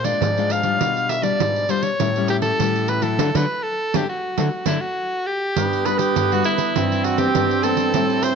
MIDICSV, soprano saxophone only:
0, 0, Header, 1, 2, 480
1, 0, Start_track
1, 0, Key_signature, 1, "major"
1, 0, Tempo, 594059
1, 655, Time_signature, 4, 2, 24, 8
1, 6747, End_track
2, 0, Start_track
2, 0, Title_t, "Soprano saxophone"
2, 0, Program_c, 0, 64
2, 38, Note_on_c, 0, 74, 96
2, 420, Note_on_c, 0, 77, 99
2, 432, Note_off_c, 0, 74, 0
2, 888, Note_on_c, 0, 76, 91
2, 900, Note_off_c, 0, 77, 0
2, 995, Note_on_c, 0, 74, 100
2, 1007, Note_off_c, 0, 76, 0
2, 1375, Note_on_c, 0, 72, 86
2, 1387, Note_off_c, 0, 74, 0
2, 1483, Note_on_c, 0, 73, 91
2, 1495, Note_off_c, 0, 72, 0
2, 1850, Note_off_c, 0, 73, 0
2, 1857, Note_on_c, 0, 67, 76
2, 1911, Note_off_c, 0, 67, 0
2, 1957, Note_on_c, 0, 69, 101
2, 2333, Note_on_c, 0, 71, 86
2, 2345, Note_off_c, 0, 69, 0
2, 2445, Note_on_c, 0, 69, 82
2, 2457, Note_off_c, 0, 71, 0
2, 2716, Note_on_c, 0, 71, 80
2, 2728, Note_off_c, 0, 69, 0
2, 2932, Note_on_c, 0, 69, 80
2, 2944, Note_off_c, 0, 71, 0
2, 3200, Note_on_c, 0, 67, 82
2, 3212, Note_off_c, 0, 69, 0
2, 3302, Note_off_c, 0, 67, 0
2, 3306, Note_on_c, 0, 66, 59
2, 3749, Note_off_c, 0, 66, 0
2, 3776, Note_on_c, 0, 64, 71
2, 3888, Note_on_c, 0, 66, 76
2, 3900, Note_off_c, 0, 64, 0
2, 4251, Note_on_c, 0, 67, 86
2, 4263, Note_off_c, 0, 66, 0
2, 4731, Note_on_c, 0, 71, 78
2, 4743, Note_off_c, 0, 67, 0
2, 4835, Note_on_c, 0, 67, 91
2, 4847, Note_off_c, 0, 71, 0
2, 5111, Note_on_c, 0, 66, 80
2, 5123, Note_off_c, 0, 67, 0
2, 5210, Note_off_c, 0, 66, 0
2, 5215, Note_on_c, 0, 64, 78
2, 5691, Note_on_c, 0, 66, 82
2, 5703, Note_off_c, 0, 64, 0
2, 5802, Note_on_c, 0, 67, 91
2, 5814, Note_off_c, 0, 66, 0
2, 6166, Note_on_c, 0, 69, 99
2, 6178, Note_off_c, 0, 67, 0
2, 6651, Note_on_c, 0, 72, 89
2, 6663, Note_off_c, 0, 69, 0
2, 6747, Note_off_c, 0, 72, 0
2, 6747, End_track
0, 0, End_of_file